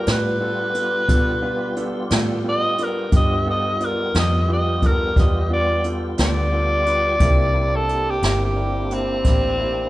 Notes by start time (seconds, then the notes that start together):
Already playing: G3 B3 F4 G4
0.06 A2 B3 D4 F4 B4, snare, closed hi-hat
0.12 B4
0.40 B3 D4 F4 A4
0.74 B3 D4 F4 A4, closed hi-hat
1.08 B2 B3 D4 F4 A4, kick, closed hi-hat
1.42 B3 D4 F4 B4
1.76 B3 D4 F4 A4, closed hi-hat
2.10 A2 B3 D4 F4 A4, snare, closed hi-hat
2.44 B3 D4 F4 A4
2.49 D#5
2.77 B3 D4 F4 A4, closed hi-hat
2.84 A#4
3.11 G2 G3 B3 D4 F4 G4, kick, closed hi-hat
3.16 D#5
3.46 B3 D4 F4 A4
3.50 D#5
3.80 B3 D4 F4 A4, closed hi-hat
3.85 A#4
4.14 F2 B3 D4 F4 A4, snare, closed hi-hat
4.19 D#5
4.48 B3 D4 F4 G4
4.53 D#5
4.82 B3 D4 F4 A4, kick, closed hi-hat
4.86 A#4
5.16 E2 B3 D4 F4 G4, kick, snare, closed hi-hat
5.20 D#5
5.50 B3 D4 F4 G4 D5
5.84 B3 D4 F4 A4, closed hi-hat
6.18 D2 B3 D4 F4 A4, snare, closed hi-hat
6.22 D5
6.52 B3 D4 F4 A4
6.86 B3 D4 F4 B4, closed hi-hat
7.20 C2 A#3 C4 D4 E4 G4, kick, closed hi-hat
7.53 A#3 D4 E4 G4
7.76 A4
7.88 A#3 D4 E4 G4, closed hi-hat
8.10 G4
8.22 G1 A#3 D4 E4 G4, snare, closed hi-hat
8.45 G4
8.56 A#3 D4 E4 G4
8.91 A#3 C4 D4 E4 G4, closed hi-hat
9.24 A1 A#3 D4 E4 G4, kick, snare, closed hi-hat
9.59 A#3 D4 E4 G4